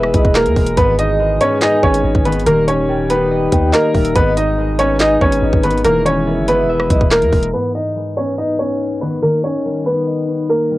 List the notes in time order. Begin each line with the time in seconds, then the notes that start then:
Already playing: E1 B2 E3 G#3 B3 E4 G#4 B4 E5
0.03 cross-stick
0.14 B1 E4 D#5, kick, closed hi-hat
0.25 E1, kick
0.35 A#3 A#4, snare, clap, closed hi-hat
0.46 E2, closed hi-hat
0.56 E1 G#3, kick, open hi-hat
0.67 closed hi-hat
0.77 G#1 G#2 D#3 G#3 B3 G#4 B4 D#5, kick, closed hi-hat
0.99 D#4 D#5, closed hi-hat
1.20 G#3
1.41 B3 C#4 C#5, closed hi-hat
1.61 D#4 D#5 G#5, snare, clap, closed hi-hat
1.83 G#1 B3 C#4 C#5, kick
1.94 closed hi-hat
2.04 G#1
2.15 G#1, kick
2.25 D#3 B3 B4, closed hi-hat
2.32 closed hi-hat
2.39 closed hi-hat
2.46 D#1 D#3 G3 A#3 G4 A#4, closed hi-hat
2.68 C#4 C#5, closed hi-hat
2.89 G3 G5
3.10 B3 D#4 B4, closed hi-hat
3.31 D#5
3.52 D#2 D#4 G5, kick, closed hi-hat
3.73 A#3 A#4 D#5, snare, clap, closed hi-hat
3.95 D#1 G3 E5, kick, open hi-hat
4.05 closed hi-hat
4.15 G#1 G#2 B2 G#3 B3 D#4 B4 D#5, kick, closed hi-hat
4.37 D#4 D#5, closed hi-hat
4.58 G#3
4.79 B3 C#4 C#5, closed hi-hat
5.00 D#4 D#5 G#5, snare, clap, closed hi-hat
5.21 G#1 B3 C#4 C#5, kick
5.32 closed hi-hat
5.42 G#1
5.53 G#1, kick
5.63 D#3 B3 B4, closed hi-hat
5.71 closed hi-hat
5.78 closed hi-hat
5.85 E1 B2 E3 G#3 A#3 E4 A#4, closed hi-hat
6.06 C#4 C#5, closed hi-hat
6.27 B3 E5
6.38 G1
6.48 B3 E4 B4, closed hi-hat
6.64 E1
6.69 E5
6.80 cross-stick
6.90 B1 E4 D#5, kick, closed hi-hat
7.01 E1, kick
7.11 A#3 A#4, snare, clap, closed hi-hat
7.22 E2, closed hi-hat
7.32 E1 G#3, kick, open hi-hat
7.43 closed hi-hat
7.53 G#2 B3 B4
7.75 D#4 D#5
7.96 G#3
8.17 B3 C#4 C#5
8.38 D#4 D#5
8.59 B3 C#4 C#5
9.01 D#3 B3 B4
9.23 D#3 A#3 A#4
9.44 C#4 C#5
9.65 G3
9.86 B3 D#4 B4
10.07 D#5
10.28 D#4
10.49 A#3 A#4
10.70 G3